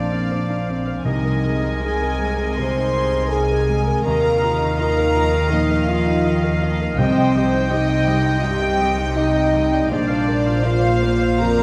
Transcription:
Already playing: double bass section A#1, felt piano A#1 F2 C4 D4 C5, cello section A#2, harp A#2 F3 C4 D4, french horn section D4, clarinet C5, viola section C5 D5, flute section D5, violin section D5 F5, oboe D5
0.12 felt piano C4, viola section F5
0.31 harp D4, felt piano C5, viola section D5
0.49 felt piano D4, viola section F5
0.69 harp C4, felt piano C4, viola section D5
0.88 felt piano C5, viola section F5
1.04 double bass section C2, felt piano C2, cello section C3, timpani C3, harp C3, french horn section D#4, clarinet A#4, viola section A#4 D#5, flute section D#5, violin section D#5 G#5, oboe D#5
1.25 felt piano A#4, viola section D#5
1.44 harp G#3, felt piano G#4, viola section D#5
1.63 felt piano D#4, viola section D#5
1.82 harp D#4, felt piano G#4, french horn section G#4, viola section D#5, flute section G#5, violin section G#5
2.02 felt piano A#4, viola section D#5
2.21 harp G#3, felt piano G#3, viola section D#5
2.39 felt piano A#4, viola section D#5
2.57 felt piano C2, harp C3, french horn section C5, viola section D#5, violin section C6, flute section C6
2.77 felt piano D#4, viola section D#5
2.96 harp C4, felt piano G#4, viola section D#5
3.14 felt piano D#4, viola section D#5
3.30 harp D#4, french horn section G#4, viola section D#5, flute section G#5, violin section G#5
3.34 felt piano G#4
3.50 felt piano A#4, viola section D#5
3.69 harp G#3, felt piano G#3, viola section D#5
3.87 felt piano A#4, viola section D#5
4.03 double bass section D#2, felt piano D#2, cello section D#3, harp D#3, french horn section A#4, clarinet D#5, viola section D#5, oboe F5, violin section F5 A#5, flute section A#5
4.23 felt piano A#4, viola section F5
4.41 harp D#4, felt piano F4, viola section D#5
4.61 felt piano D#4, viola section F5
4.77 felt piano F4, harp A#4, french horn section A#4, viola section D#5, flute section A#5, violin section A#5
4.98 felt piano A#4, viola section F5
5.16 felt piano F3, harp D#4, viola section D#5
5.34 felt piano A#4, viola section F5
5.51 felt piano A#2, harp F3, french horn section D#4, flute section D#5, viola section D#5, violin section D#5
5.70 felt piano A#4, viola section F5
5.88 harp D#4, french horn section F4, felt piano F4, viola section D#5, violin section F5, flute section F5
6.06 felt piano D#4, viola section F5
6.25 felt piano F4, harp A#4, viola section D#5
6.44 felt piano A#4, viola section F5
6.62 felt piano F3, harp D#4, viola section D#5
6.81 felt piano A#4, viola section F5
6.97 double bass section C2, felt piano C2, harp C3, timpani C3, cello section C3, french horn section C4, violin section C5 G5, flute section C5, viola section D#5, oboe G5
7.18 felt piano D#5, viola section G5
7.35 harp G3, felt piano G4, viola section D#5
7.54 felt piano D#4, viola section G5
7.70 french horn section D#4, harp D#4, felt piano G4, violin section D#5, viola section D#5, flute section D#5
7.89 felt piano D#5, viola section G5
8.07 harp G3, felt piano G3, viola section D#5
8.25 felt piano D#5, viola section G5
8.42 felt piano G2, harp C4, french horn section G4, viola section D#5, flute section G5, violin section G5
8.62 felt piano D#5, viola section G5
8.80 harp G3, felt piano G4, viola section D#5
8.98 felt piano D#4, viola section G5
9.16 french horn section D#4, harp D#4, felt piano G4, violin section D#5, flute section D#5, viola section D#5
9.36 felt piano D#5, viola section G5
9.54 felt piano G3, harp G3, viola section D#5
9.72 felt piano D5, viola section G5
9.90 double bass section A#1, felt piano A#1, cello section A#2, harp A#2, french horn section D4, clarinet C5, viola section C5 D5, flute section D5, violin section D5 F5
10.08 felt piano C5, viola section F5
10.26 harp A#3, felt piano A#4, viola section D5
10.45 felt piano F4, viola section F5
10.64 french horn section F4, harp F4, felt piano A#4, viola section D5, violin section F5, oboe F5, flute section F5
10.83 felt piano C5, viola section F5
11.02 felt piano A#3, harp A#3, viola section D5
11.21 felt piano C5, viola section F5
11.39 felt piano F2, harp F3, french horn section A#4, viola section D5, violin section A#5, flute section A#5
11.59 viola section F5

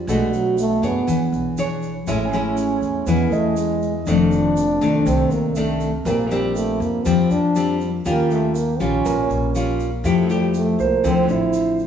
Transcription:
0.07 upright bass B1, nylon-string guitar B2 A3 D4 F#4, trombone G#3, shaker
0.33 trombone F#3, shaker
0.58 trombone A3, shaker
0.82 upright bass F#2, trombone B3, nylon-string guitar D4 G#4 C#5, shaker
1.07 upright bass E2, nylon-string guitar E3, shaker
1.32 upright bass B1, shaker
1.58 nylon-string guitar D4 G#4 C#5, shaker
1.82 shaker
2.07 upright bass A1, nylon-string guitar A2 G#3 C#4 E4, trombone C#4, grand piano E5, shaker
2.25 grand piano G#5
2.33 nylon-string guitar G#3 C#4 E4, shaker
2.57 shaker
2.82 upright bass E2, shaker
3.07 upright bass E2, nylon-string guitar E3 G#3 C#4 E4, trombone B3, shaker
3.32 upright bass E2, trombone A3, grand piano D#5, shaker
3.57 trombone G#3, shaker
3.82 shaker
4.06 upright bass F1, nylon-string guitar F2 D#3 A3 D4, trombone D4, shaker
4.32 shaker
4.57 shaker
4.81 upright bass C2, nylon-string guitar D#3 A3 D4, shaker
5.06 upright bass C2, nylon-string guitar C3, trombone C4, shaker
5.31 upright bass C2, trombone A#3, shaker
5.56 nylon-string guitar D#3 A3 D4, trombone A3, shaker
5.80 shaker
6.05 upright bass A#1, nylon-string guitar A#2 G3 C4 D4, trombone A#3, grand piano A#4, shaker
6.30 trombone G3, nylon-string guitar G3 C4 D4, shaker
6.56 trombone A3, shaker
6.80 upright bass F2, trombone A#3, shaker
7.05 upright bass F2, nylon-string guitar F3 G3 C4 D4, trombone C4, shaker
7.31 upright bass F2, trombone D4, shaker
7.56 nylon-string guitar G3 C4 D4, shaker
7.81 shaker
8.05 upright bass D#2, nylon-string guitar D#3 G3 C#4 F4, trombone A#3, shaker
8.31 trombone A3, shaker
8.55 trombone A#3, shaker
8.79 upright bass A#1, nylon-string guitar G3 C#4 F4, trombone C#4, shaker
9.05 upright bass A#1, nylon-string guitar A#2, grand piano A#4, shaker
9.23 grand piano C#5
9.30 upright bass A#1, shaker
9.55 nylon-string guitar G3 C#4 F4, shaker
9.80 shaker
10.04 upright bass F2, nylon-string guitar F3 A3 E4 G4, trombone A3, shaker
10.29 trombone G3, nylon-string guitar A3 E4 G4, shaker
10.54 trombone A3, shaker
10.79 upright bass C2, trombone A#3, grand piano C5, shaker
11.04 upright bass D2, nylon-string guitar D3 F3 C4 E4, trombone C4, shaker
11.29 upright bass A1, trombone E4, shaker
11.53 shaker
11.79 shaker

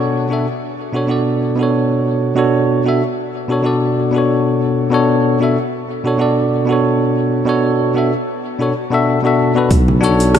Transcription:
Already playing: tine electric piano B2 D4 F#4 A4 C#5
0.29 tine electric piano B2 D4 F#4 A4 E5
0.93 tine electric piano B2 D4 F#4 A4 C#5
1.07 tine electric piano B2 D4 F#4 A4 D5
1.55 tine electric piano B2 D4 F#4
1.61 tine electric piano A4 C#5
2.35 tine electric piano B2 D4 F#4 A4 C#5
2.85 tine electric piano B2 D4 F#4 A4 E5
3.48 tine electric piano B2 D4 F#4 A4 C#5
3.63 tine electric piano B2 D4 F#4 A4 D5
4.11 tine electric piano B2 D4 F#4
4.16 tine electric piano A4 C#5
4.90 tine electric piano B2 D4 F#4 A4 C#5
5.40 tine electric piano B2 D4 F#4 A4 E5
6.04 tine electric piano B2 D4 F#4 A4 C#5
6.18 tine electric piano B2 D4 F#4 A4 D5
6.65 tine electric piano B2 D4 F#4
6.71 tine electric piano A4 C#5
7.45 tine electric piano B2 D4 F#4 A4 C#5
7.95 tine electric piano B2 D4 F#4 A4 E5
8.58 tine electric piano B2 D4 F#4 A4 C#5
8.90 tine electric piano B2 D4 F#4 A4 E5
9.23 tine electric piano B2 D4 F#4 A4 E5
9.54 tine electric piano B2 D4 F#4 A4 B4
9.71 fretless electric bass B1, kick, open hi-hat, shaker
9.88 low conga
10.01 tine electric piano D4 F#4 A4 C#5, shaker
10.20 open hi-hat, shaker
10.35 cross-stick, open hi-hat, low conga, shaker

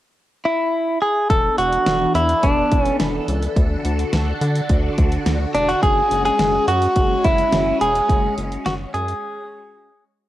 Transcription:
0.45 clean electric guitar E4
1.02 clean electric guitar G#4
1.30 analog synth bass E1, string machine E3 B3 D4 A4, clean electric guitar A4, kick, closed hi-hat
1.58 analog synth bass E1, clean electric guitar F#4, closed hi-hat
1.73 closed hi-hat
1.86 analog synth bass E1, snare, closed hi-hat
2.15 analog synth bass E2, clean electric guitar E4, closed hi-hat
2.29 closed hi-hat
2.43 analog synth bass E1, clean electric guitar D4, kick, closed hi-hat
2.72 analog synth bass E1, kick, closed hi-hat
2.81 clean electric guitar C#4
2.85 closed hi-hat
3.00 analog synth bass E1, snare, closed hi-hat
3.28 analog synth bass C#2, closed hi-hat
3.42 closed hi-hat
3.56 analog synth bass D2, string machine D3 D4 F#4, kick, closed hi-hat
3.85 analog synth bass D2, closed hi-hat
3.99 closed hi-hat
4.13 analog synth bass D2, snare, closed hi-hat
4.41 analog synth bass D3, closed hi-hat
4.55 closed hi-hat
4.69 analog synth bass D2, kick, closed hi-hat
4.98 analog synth bass D2, kick, closed hi-hat
5.12 closed hi-hat
5.26 analog synth bass D2, snare, closed hi-hat
5.54 analog synth bass E1, clean electric guitar D4, closed hi-hat
5.68 clean electric guitar F#4, closed hi-hat
5.83 analog synth bass F#1, string machine G#3 C#4, clean electric guitar G#4, kick, closed hi-hat
6.11 analog synth bass F#1, closed hi-hat
6.25 clean electric guitar G#4, closed hi-hat
6.39 analog synth bass F#1, snare, closed hi-hat
6.68 analog synth bass F#2, clean electric guitar F#4, closed hi-hat
6.82 closed hi-hat
6.96 analog synth bass F#1, kick, closed hi-hat
7.24 analog synth bass F#1, clean electric guitar E4, kick, closed hi-hat
7.38 closed hi-hat
7.52 analog synth bass F#1, snare, closed hi-hat
7.81 analog synth bass E1, clean electric guitar G#4, closed hi-hat
7.95 closed hi-hat
8.09 analog synth bass F#1, kick, closed hi-hat
8.38 analog synth bass F#1, closed hi-hat
8.52 closed hi-hat
8.66 analog synth bass F#1, clean electric guitar F#4, snare, closed hi-hat
8.94 analog synth bass F#2, clean electric guitar G#4, closed hi-hat
9.08 closed hi-hat

